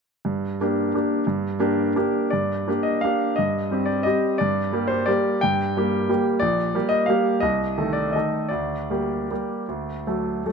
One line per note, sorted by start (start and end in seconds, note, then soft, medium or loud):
0.25 0.60 G2 soft
0.61 0.91 A#3 soft
0.61 0.91 D4 soft
0.61 0.91 G4 soft
0.94 1.23 A#3 soft
0.94 1.24 D4 soft
0.94 1.24 G4 soft
1.27 1.58 G2 medium
1.59 1.92 A#3 soft
1.59 1.92 D4 soft
1.59 1.92 G4 soft
1.96 2.29 A#3 soft
1.96 2.29 D4 soft
1.96 2.30 G4 soft
2.30 2.67 G2 soft
2.30 2.84 D5 medium
2.67 2.99 A#3 soft
2.67 2.99 D4 soft
2.67 3.00 G4 soft
2.83 3.02 D#5 soft
3.01 3.35 A#3 soft
3.01 3.35 D4 soft
3.01 3.35 G4 soft
3.01 3.37 F5 medium
3.36 3.70 G2 soft
3.36 3.87 D#5 medium
3.71 4.02 G3 soft
3.71 4.02 C4 soft
3.71 4.03 G4 soft
3.86 4.04 D5 medium
4.03 4.36 G3 soft
4.03 4.37 C4 soft
4.03 4.37 G4 soft
4.03 4.39 D#5 medium
4.38 4.73 G2 soft
4.38 4.89 D5 medium
4.73 5.04 G3 soft
4.73 5.04 A#3 soft
4.73 5.04 G4 soft
4.88 5.06 C5 medium
5.06 5.39 G3 soft
5.06 5.40 A#3 soft
5.06 5.40 G4 soft
5.06 5.42 D5 medium
5.41 5.75 G2 medium
5.41 6.25 G5 medium
5.77 6.06 G3 soft
5.77 6.07 A#3 soft
5.77 6.07 G4 soft
6.09 6.39 G3 soft
6.09 6.39 A#3 soft
6.09 6.39 G4 soft
6.40 6.74 A#1 soft
6.40 6.91 D5 medium
6.75 7.06 G3 soft
6.75 7.06 A#3 soft
6.75 7.06 G4 soft
6.89 7.08 D#5 medium
7.06 7.39 G3 soft
7.06 7.40 A#3 soft
7.06 7.39 G4 soft
7.06 7.41 F5 medium
7.40 7.76 C2 soft
7.40 7.95 D#5 medium
7.78 8.11 D#3 soft
7.78 8.11 A3 soft
7.78 8.11 A4 soft
7.93 8.13 D5 medium
8.13 8.48 D#3 soft
8.13 8.48 A3 soft
8.13 8.49 A4 soft
8.13 8.51 D#5 medium
8.49 8.89 D2 soft
8.49 10.52 D5 soft
8.90 9.26 G3 soft
8.90 9.26 A#3 soft
8.90 9.27 G4 soft
9.30 9.65 G3 soft
9.30 9.65 A#3 soft
9.30 9.65 G4 soft
9.68 10.05 D2 soft
10.07 10.42 F#3 soft
10.07 10.42 A3 soft
10.07 10.42 A4 soft
10.45 10.52 F#3 soft
10.45 10.52 A3 soft
10.45 10.52 A4 soft